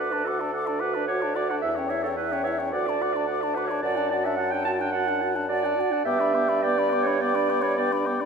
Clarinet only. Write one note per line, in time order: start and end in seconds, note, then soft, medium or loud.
0.00 0.27 B4 medium
0.25 0.81 A4 medium
0.80 1.07 B4 medium
1.08 1.35 C#5 medium
1.35 1.48 D5 medium
1.49 1.55 F#5 medium
1.62 1.75 E5 medium
1.89 2.02 C#5 medium
2.03 2.09 A4 medium
2.16 2.43 B4 medium
2.43 2.56 C#5 medium
2.72 3.56 D5 medium
3.55 3.67 B4 medium
3.65 3.84 C#5 medium
3.83 4.09 D5 loud
4.10 4.26 D5 medium
4.24 4.36 E5 medium
4.37 4.53 F#5 medium
4.51 4.64 G5 medium
4.65 4.72 A5 medium
4.80 4.92 G5 medium
4.92 5.29 F#5 medium
5.49 6.02 D5 loud
6.05 6.64 E5 loud
6.63 7.04 D5 loud
7.03 7.23 C#5 medium
7.21 7.62 D5 medium
7.61 7.77 C#5 medium
7.77 7.91 D5 medium